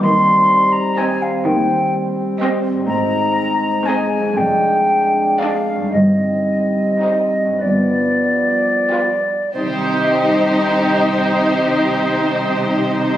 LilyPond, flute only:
\new Staff \with { instrumentName = "Flute" } { \time 6/8 \key c \minor \tempo 4. = 38 c'''8. bes''16 aes''16 f''16 g''8 r4 | bes''4 aes''8 g''4 f''8 | ees''4. d''4. | c''2. | }